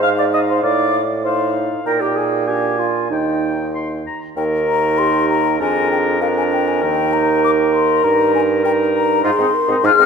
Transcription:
0.00 0.61 G#2 medium
0.00 0.62 D#4 medium
0.00 0.10 F5 medium
0.00 0.63 F5 soft
0.00 0.09 F6 medium
0.18 0.25 D5 medium
0.18 0.24 D6 medium
0.34 0.41 D#5 medium
0.34 0.40 D#6 medium
0.49 0.65 C5 medium
0.49 0.62 C6 medium
0.63 1.69 A2 medium
0.63 1.02 D#4 medium
0.63 1.03 D5 medium
0.63 1.02 F5 soft
0.63 1.02 D6 medium
1.23 1.81 D#4 medium
1.23 1.53 C5 medium
1.23 1.82 F5 medium
1.23 1.53 C6 medium
1.83 3.07 A#2 medium
1.83 2.47 D#4 soft
1.83 2.02 A#4 medium
1.83 2.49 G5 soft
1.83 1.92 A#5 medium
2.01 2.17 G4 medium
2.01 2.07 G5 soft
2.16 2.49 G#4 medium
2.16 2.24 G#5 medium
2.46 3.09 D4 soft
2.46 2.80 G4 medium
2.46 2.79 G5 soft
2.46 3.11 G#5 soft
2.78 3.09 F4 medium
2.78 2.86 F5 soft
3.09 4.04 D#2 soft
3.09 3.72 D#4 soft
3.09 4.03 D#4 soft
3.09 3.73 D#5 soft
3.09 3.67 G5 soft
3.75 3.89 C6 soft
4.07 4.21 A#5 soft
4.36 5.56 D#2 medium
4.36 5.56 D#4 medium
4.36 5.00 A#4 medium
4.36 5.56 A#4 medium
4.36 4.44 G5 medium
4.68 5.00 A#5 medium
4.98 5.58 G4 medium
4.98 5.29 C6 medium
5.29 5.60 A#5 medium
5.59 6.84 F2 medium
5.59 6.20 D4 medium
5.59 6.20 G#4 medium
5.59 6.21 A#4 medium
5.59 5.91 G#5 medium
5.92 5.98 G5 medium
6.21 6.84 D4 medium
6.21 9.20 A#4 medium
6.21 6.81 A#4 medium
6.21 6.27 F5 medium
6.38 6.44 G#5 medium
6.52 6.69 G5 medium
6.68 6.84 G#5 medium
6.82 8.03 D#2 medium
6.82 8.04 D#4 medium
6.82 8.01 A#4 medium
6.82 7.15 G5 medium
7.13 7.43 A#5 medium
7.44 7.51 D6 medium
7.74 8.06 C6 medium
8.04 9.21 G2 medium
8.04 8.63 D#4 medium
8.04 8.63 A#4 medium
8.04 8.34 A#5 medium
8.35 8.41 G#5 medium
8.64 9.23 D#4 medium
8.64 9.23 A#4 medium
8.64 8.72 G5 medium
8.94 9.24 A#5 medium
9.23 9.30 G#2 medium
9.23 9.31 D#4 medium
9.23 9.31 F4 medium
9.23 9.55 G#4 medium
9.23 9.87 C6 medium
9.39 9.46 G#2 medium
9.39 9.47 C4 medium
9.39 9.47 D#4 soft
9.54 9.85 A#4 medium
9.68 9.75 G#2 medium
9.68 9.77 C4 medium
9.68 9.77 D#4 medium
9.83 9.90 G#2 medium
9.83 9.91 D#4 medium
9.83 9.92 F4 medium
9.83 10.06 G#4 medium
9.83 10.06 F6 loud
9.98 10.05 G#2 soft
9.98 10.06 C4 medium
9.98 10.06 D#4 medium

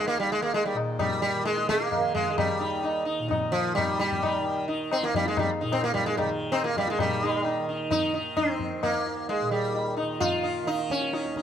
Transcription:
0.00 0.12 D#2 soft
0.00 0.73 A#2 medium
0.00 1.36 D#3 medium
0.07 0.19 A#3 medium
0.07 tabla tin medium
0.13 2.58 D#2 medium
0.20 0.31 G3 medium
0.32 0.42 G#3 medium
0.42 0.54 A#3 medium
0.53 0.65 G#3 medium
0.53 tabla tin medium
0.66 0.76 G3 medium
0.74 3.19 A#2 medium
0.74 tabla na medium
0.99 1.21 G3 medium
0.99 tabla na medium
0.99 tabla ge medium
1.22 1.45 G3 medium
1.36 1.98 D#3 medium
1.45 1.69 G#3 medium
1.45 tabla te medium
1.58 tabla te soft
1.69 2.14 A#3 loud
1.69 tabla ke medium
1.80 tabla te medium
1.92 tabla na medium
1.92 tabla ge medium
1.98 3.81 D#3 medium
2.15 2.29 G#3 medium
2.15 tabla ge soft
2.30 2.37 G#3 medium
2.38 3.03 G3 medium
2.38 tabla na loud
2.38 tabla ge medium
2.58 5.01 D#2 medium
2.58 2.82 D#4 soft
2.83 3.04 D#4 soft
2.83 tabla na medium
3.05 3.27 D#4 soft
3.19 5.62 A#2 medium
3.28 3.51 D#4 soft
3.28 tabla na medium
3.28 tabla ge medium
3.52 3.75 F3 loud
3.75 3.98 G3 loud
3.75 tabla na medium
3.75 tabla ge medium
3.81 4.40 D#3 medium
3.99 4.65 G3 medium
3.99 tabla te medium
4.12 tabla ge medium
4.22 4.44 D#4 soft
4.22 tabla na medium
4.22 tabla ge medium
4.40 6.22 D#3 medium
4.68 4.90 D#4 soft
4.68 tabla tin medium
4.91 5.03 C4 medium
4.91 tabla na medium
5.01 8.81 D#2 medium
5.01 5.15 A#3 medium
5.01 tabla te medium
5.14 5.27 G3 medium
5.14 tabla tin medium
5.14 tabla ge medium
5.26 5.38 G#3 medium
5.26 tabla te medium
5.37 5.49 G3 medium
5.37 tabla na loud
5.37 tabla ge medium
5.61 6.98 A#2 medium
5.61 5.82 D#4 soft
5.72 5.83 C4 loud
5.72 tabla na medium
5.83 5.93 A#3 loud
5.83 tabla te medium
5.94 6.06 G3 medium
5.94 tabla tin medium
5.94 tabla ge medium
6.06 6.17 G#3 medium
6.06 tabla te medium
6.17 6.29 G3 medium
6.17 tabla na medium
6.17 tabla ge medium
6.22 6.84 D#3 medium
6.52 6.64 C4 loud
6.52 tabla na medium
6.64 6.76 A#3 medium
6.64 tabla te medium
6.76 6.89 G3 medium
6.76 tabla tin medium
6.76 tabla ge medium
6.84 7.59 D#3 medium
6.84 tabla te medium
6.90 7.00 G#3 medium
6.98 9.41 A#2 medium
6.98 7.65 G3 medium
6.98 tabla na medium
6.98 tabla ge medium
7.23 7.44 D#4 soft
7.45 7.66 D#4 soft
7.45 tabla na medium
7.59 8.20 D#3 medium
7.69 7.90 D#4 soft
7.91 8.13 D#4 loud
7.91 tabla na medium
7.91 tabla ge medium
8.14 8.35 D#4 soft
8.14 tabla te medium
8.20 10.03 D#3 medium
8.37 8.83 C4 medium
8.37 tabla na medium
8.37 tabla ge medium
8.60 tabla ge medium
8.81 11.24 D#2 medium
8.81 9.29 A#3 medium
8.81 tabla na medium
8.81 tabla ge medium
9.06 tabla te medium
9.29 9.51 G#3 medium
9.29 tabla tin medium
9.41 11.42 A#2 medium
9.51 9.94 G3 medium
9.75 tabla tin medium
9.97 10.19 D#4 soft
9.97 tabla na medium
10.03 10.63 D#3 medium
10.20 10.68 F4 medium
10.20 tabla na medium
10.20 tabla ge medium
10.43 10.65 D#4 soft
10.63 11.42 D#3 medium
10.63 tabla te medium
10.67 10.91 D#4 medium
10.79 tabla te medium
10.90 11.42 C#4 medium
10.90 tabla ke medium
11.01 tabla te medium
11.13 11.34 D#4 soft
11.13 tabla te medium
11.25 11.42 D#2 medium
11.25 tabla te medium
11.36 11.42 D#4 soft
11.36 tabla ke medium

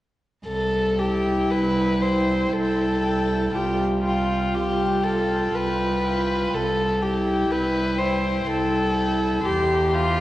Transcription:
0.46 1.38 C2 soft
0.46 1.01 A4 medium
0.99 1.99 E4 soft
0.99 1.53 G4 soft
0.99 1.99 G5 soft
1.51 2.40 C2 soft
1.51 2.03 B4 soft
2.01 3.01 E4 soft
2.01 2.54 C5 soft
2.01 3.01 G5 soft
2.52 3.41 C2 soft
2.52 3.56 A4 soft
3.02 3.53 E4 soft
3.02 3.52 G5 soft
3.53 4.43 C2 soft
3.53 4.03 F4 soft
3.53 4.03 G4 soft
3.53 4.03 G5 soft
4.04 4.57 F4 soft
4.04 5.04 F4 soft
4.04 5.04 G5 soft
4.55 5.43 C2 soft
4.55 5.05 G4 soft
5.04 6.02 F4 soft
5.04 5.56 A4 soft
5.04 6.02 G5 soft
5.54 6.41 C2 soft
5.54 6.56 B4 soft
6.03 6.52 F4 soft
6.03 6.52 G5 soft
6.52 7.39 C2 soft
6.52 7.04 A4 medium
7.00 7.97 E4 soft
7.00 7.52 G4 soft
7.00 7.96 G5 soft
7.50 8.35 C2 soft
7.50 8.00 B4 medium
7.98 8.93 E4 soft
7.98 8.49 C5 soft
7.98 8.92 G5 soft
8.47 9.33 C2 soft
8.47 9.47 A4 medium
8.93 9.44 E4 soft
8.93 9.42 G5 soft
9.43 10.20 E2 soft
9.43 9.92 G4 soft
9.43 9.96 G4 soft
9.43 9.91 C6 soft
9.92 10.20 F4 medium
9.92 10.20 G4 soft
9.92 10.20 C6 soft

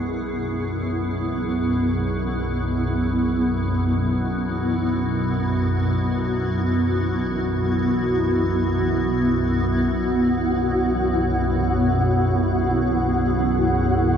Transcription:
0.00 9.82 B1 medium
0.00 9.81 F#2 medium
0.00 14.17 B3 medium
0.00 14.17 E4 medium
0.00 3.89 G#4 medium
3.52 13.18 F#4 medium
9.82 14.17 B1 medium
9.82 14.17 F#2 medium
9.82 14.17 F#4 medium
9.82 14.17 F#5 medium
10.98 14.17 G#4 medium

